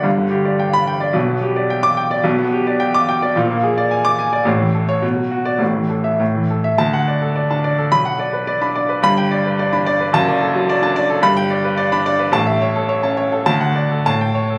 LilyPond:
<<
  \new Staff \with { instrumentName = "Grand piano" } { \time 2/4 \key g \lydian \tempo 4 = 108 << { r4 r16 b''8 r16 | r4 r16 d'''8 r16 | \key d \major r4 r16 d'''8 r16 | r4 r16 d'''8 r16 |
r8. cis''16 r8. d''16 | r8. e''16 r8. e''16 | a''8 r4. | b''8 r4. |
b''8 r4. | a''8 r4. | b''8 r4. | a''8 r4. |
a''8 r8 a''8 r8 | } \\ { r2 | r2 | r2 | r2 |
r2 | r2 | r16 fis''16 d''16 a'16 d''16 a''16 d''16 a'16 | r16 fis''16 d''16 b'16 d''16 b''16 d''16 b'16 |
r16 g''16 d''16 b'16 d''16 b''16 d''16 b'16 | r16 d''16 a'16 fis16 d''16 a''16 d''16 a'16 | r16 g''16 d''16 b'16 d''16 b''16 d''16 b'16 | r16 e''16 cis''16 a'16 cis''16 a''16 cis''16 a'16 |
r16 fis''16 d''16 a'16 r16 g''16 cis''16 a'16 | } >> }
  \new Staff \with { instrumentName = "Grand piano" } { \time 2/4 \key g \lydian <g,, g,>16 d16 g'16 d''16 g''8 g''16 d''16 | <b,, b,>16 b16 g'16 d''16 g''8 g''16 d''16 | \key d \major <b,, b,>16 b16 g'16 d''16 g''8 g''16 d''16 | <bes,, bes,>16 bes16 aes'16 d''16 aes''8 aes''16 d''16 |
<a,, a,>16 e16 a'8 b,16 fis16 fis'8 | <a,, a,>16 e16 a'8 a,16 e16 a'8 | d,4~ d,16 d'8 r16 | b,,4~ b,,16 d'8 r16 |
<g,, g,>4~ <g,, g,>16 d'8 r16 | <fis,, fis,>4~ <fis,, fis,>16 d'8 r16 | <g,, g,>4~ <g,, g,>16 d'8 r16 | <a,, a,>4~ <a,, a,>16 cis'8 r16 |
d,4 a,4 | }
>>